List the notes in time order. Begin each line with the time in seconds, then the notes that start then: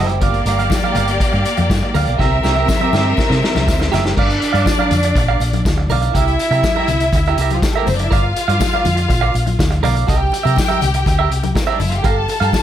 Already playing: F#1 G3 E4 G4 C5
0.09 muted clean electric guitar stroke, closed hi-hat
0.21 G1 A#3 G4 A#4 D5 F5, kick, closed hi-hat, muted conga, low conga
0.34 closed hi-hat
0.45 G1 A#4 D5 F5, closed hi-hat, tambourine, muted conga
0.59 A#4 D5 F5, closed hi-hat, high conga
0.70 muted clean electric guitar stroke, kick, snare, tambourine, muted conga, high conga
0.83 A#4 D5 F5, high conga
0.95 G1 A#4 D5 F5, closed hi-hat, tambourine, muted conga, low conga
1.08 muted clean electric guitar stroke, closed hi-hat
1.20 muted clean electric guitar stroke, muted fingered electric bass stroke, kick, closed hi-hat, tambourine
1.33 G2, muted clean electric guitar stroke, closed hi-hat
1.45 closed hi-hat, muted conga
1.57 F2, muted clean electric guitar stroke, closed hi-hat, high conga
1.70 G2, muted clean electric guitar stroke, kick, snare, tambourine
1.83 muted clean electric guitar stroke
1.94 D2 A#4 D5 F5, open hi-hat, tambourine, high conga, low conga
2.06 B1 A#4 D5 F5, closed hi-hat
2.18 C2 C4 G4 A#4 E5, kick, snare, low conga
2.43 C2 G4 A#4 E5, snare, tambourine, muted conga
2.56 G4 A#4 E5, high conga
2.68 muted clean electric guitar stroke, kick, snare, tambourine, muted conga, high conga
2.81 G4 A#4 E5, high conga
2.93 G2 G4 A#4 E5, snare, tambourine, muted conga, low conga
3.05 muted clean electric guitar stroke
3.17 muted clean electric guitar stroke, kick, snare, tambourine, muted conga
3.30 C3, muted clean electric guitar stroke, snare
3.43 snare, muted conga
3.55 C2, muted clean electric guitar stroke, snare, high conga
3.67 D2, muted clean electric guitar stroke, kick, snare, tambourine, muted conga
3.80 muted clean electric guitar stroke, snare
3.92 F#1 G4 A#4 E5, snare, tambourine, high conga, low conga
4.05 muted clean electric guitar stroke, snare
4.17 G1 D4 A#4 D5 F5, kick, crash, low conga
4.29 muted clean electric guitar stroke, closed hi-hat
4.42 muted clean electric guitar stroke, closed hi-hat, tambourine
4.52 G2 A#4 D5 F5, closed hi-hat, high conga
4.66 muted clean electric guitar stroke, kick, snare, tambourine, high conga
4.79 A#4 D5 F5, high conga
4.91 F2, muted clean electric guitar stroke, closed hi-hat, tambourine, low conga
5.03 muted clean electric guitar stroke, closed hi-hat
5.16 A#1, muted clean electric guitar stroke, kick, closed hi-hat, tambourine
5.28 A#4 D5 F5
5.40 A#1, muted clean electric guitar stroke, closed hi-hat, tambourine, muted conga
5.53 muted clean electric guitar stroke, closed hi-hat, high conga
5.65 D2, muted clean electric guitar stroke, kick, snare, tambourine
5.78 muted clean electric guitar stroke
5.89 B1 A#4 D5 F5, open hi-hat, tambourine, high conga, low conga
6.02 A#4 D5 F5, closed hi-hat
6.13 C2 E4 G4 A#4 E5, kick, closed hi-hat, muted conga, low conga
6.26 muted clean electric guitar stroke, closed hi-hat
6.39 muted clean electric guitar stroke, closed hi-hat, tambourine
6.51 C3 G4 A#4 E5, closed hi-hat, high conga
6.63 muted clean electric guitar stroke, kick, snare, tambourine, high conga
6.76 G4 A#4 E5, high conga
6.88 C2, muted clean electric guitar stroke, closed hi-hat, tambourine, muted conga, low conga
7.00 muted clean electric guitar stroke, closed hi-hat
7.12 D2, muted clean electric guitar stroke, kick, closed hi-hat, tambourine, muted conga
7.26 G4 A#4 E5, closed hi-hat
7.38 C2 G4 A#4, closed hi-hat, tambourine, muted conga
7.42 E5
7.50 F3 F4, muted clean electric guitar stroke, closed hi-hat, high conga
7.62 G3 G4, muted clean electric guitar stroke, kick, snare, tambourine, muted conga
7.70 A3 A4
7.75 A#3 G4 A#4 E5
7.87 F#1 C4 C5, muted clean electric guitar stroke, open hi-hat, tambourine, high conga, low conga
7.95 D4 D5
7.99 muted clean electric guitar stroke, closed hi-hat
8.03 E4 E5
8.11 G1 F4 A#4 D5 F5, kick, closed hi-hat, tambourine, muted conga, low conga
8.24 muted clean electric guitar stroke
8.36 muted clean electric guitar stroke, closed hi-hat, tambourine
8.48 G2 A#4 D5 F5, closed hi-hat, high conga
8.60 muted clean electric guitar stroke, kick, snare, tambourine, muted conga, high conga
8.73 A#4 D5 F5, high conga
8.85 F2, muted clean electric guitar stroke, closed hi-hat, tambourine, muted conga, low conga
8.97 muted clean electric guitar stroke, closed hi-hat
9.08 A#1, muted clean electric guitar stroke, kick, closed hi-hat, tambourine
9.21 A#4 D5 F5
9.34 A#1, muted clean electric guitar stroke, closed hi-hat, tambourine, muted conga
9.46 muted clean electric guitar stroke, closed hi-hat, high conga
9.59 D2, muted clean electric guitar stroke, kick, snare, tambourine
9.71 muted clean electric guitar stroke, closed hi-hat
9.83 B1 A#4 D5 F5, open hi-hat, tambourine, muted conga, high conga, low conga
9.95 A#4 D5 F5, closed hi-hat
10.07 C2 G4 A#4 E5 G5, kick, closed hi-hat, tambourine, muted conga, low conga
10.19 muted clean electric guitar stroke
10.32 muted clean electric guitar stroke, closed hi-hat, tambourine, muted conga
10.43 C3 G4 A#4 E5, closed hi-hat, high conga
10.56 muted clean electric guitar stroke, kick, snare, tambourine, high conga
10.68 G4 A#4 E5, closed hi-hat, high conga
10.81 C2, muted clean electric guitar stroke, closed hi-hat, tambourine, muted conga, low conga
10.94 muted clean electric guitar stroke, closed hi-hat
11.06 D2, muted clean electric guitar stroke, kick, closed hi-hat, tambourine, muted conga
11.19 G4 A#4 E5
11.31 C2, muted clean electric guitar stroke, closed hi-hat
11.43 muted clean electric guitar stroke, closed hi-hat, high conga
11.55 A#3 A#4, muted clean electric guitar stroke, kick, snare, tambourine, muted conga
11.63 C4 C5 E5
11.68 G4 A#4
11.72 D4 D5
11.78 F#1 E4 E5, muted clean electric guitar stroke, open hi-hat, tambourine, muted conga, high conga, low conga
11.89 F4 F5, muted clean electric guitar stroke, closed hi-hat
11.97 G4 G5
12.04 G1 G4 A4 A#4 F5 A5, kick, closed hi-hat, tambourine, muted conga, low conga
12.16 muted clean electric guitar stroke
12.28 muted clean electric guitar stroke, closed hi-hat, tambourine, muted conga
12.40 G2 G4 A#4 F5, closed hi-hat, high conga
12.53 muted clean electric guitar stroke, kick, snare, tambourine, high conga